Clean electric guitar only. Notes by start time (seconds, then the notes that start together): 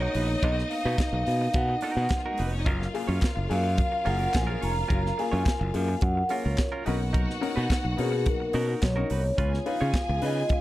0.01 D#4 F#4 A#4
0.15 D#4 F#4 B4
0.29 muted clean electric guitar stroke
0.44 D#4 F#4 A#4
0.72 muted clean electric guitar stroke
0.86 D#4 F#4 B4
1.00 muted clean electric guitar stroke
1.14 muted clean electric guitar stroke
1.41 muted clean electric guitar stroke
1.56 muted clean electric guitar stroke
1.69 muted clean electric guitar stroke
1.82 D#4 F#4 A#4
1.97 D#4 F#4 A#4
2.26 D#4 F#4 A#4
2.39 D#4 F#4 B4
2.53 muted clean electric guitar stroke
2.66 C#4 F4 A#4
2.80 muted clean electric guitar stroke
2.95 muted clean electric guitar stroke
3.07 C#4 F4 C#5
3.22 muted clean electric guitar stroke
3.36 muted clean electric guitar stroke
3.64 muted clean electric guitar stroke
3.78 muted clean electric guitar stroke
3.92 muted clean electric guitar stroke
4.05 C#4 F4 A#4
4.19 C#4 F4 A#4
4.33 muted clean electric guitar stroke
4.47 C#4 F4 A#4
4.61 C#4 F4 C#5
4.75 muted clean electric guitar stroke
4.88 C#4 F4 A#4
5.03 muted clean electric guitar stroke
5.17 muted clean electric guitar stroke
5.32 C#4 F4 C#5
5.45 muted clean electric guitar stroke
5.60 muted clean electric guitar stroke
5.88 muted clean electric guitar stroke
6.02 muted clean electric guitar stroke
6.17 muted clean electric guitar stroke
6.30 C#4 F4 A#4
6.44 C#4 F4 A#4
6.72 C#4 F4 A#4
6.85 D#4 F#4 B4
6.99 muted clean electric guitar stroke
7.13 D#4 F#4 A#4
7.28 muted clean electric guitar stroke
7.42 muted clean electric guitar stroke
7.56 D#4 F#4 B4
7.70 muted clean electric guitar stroke
7.84 muted clean electric guitar stroke
8.12 muted clean electric guitar stroke
8.26 muted clean electric guitar stroke
8.40 muted clean electric guitar stroke
8.54 D#4 F#4 A#4
8.67 D#4 F#4 A#4
8.82 muted clean electric guitar stroke
8.96 D#4 F#4 A#4
9.10 D#4 F#4 B4
9.24 muted clean electric guitar stroke
9.38 C#4 F4 B4
9.53 muted clean electric guitar stroke
9.67 muted clean electric guitar stroke
9.81 C#4 F4 C#5
10.10 muted clean electric guitar stroke
10.37 muted clean electric guitar stroke
10.52 muted clean electric guitar stroke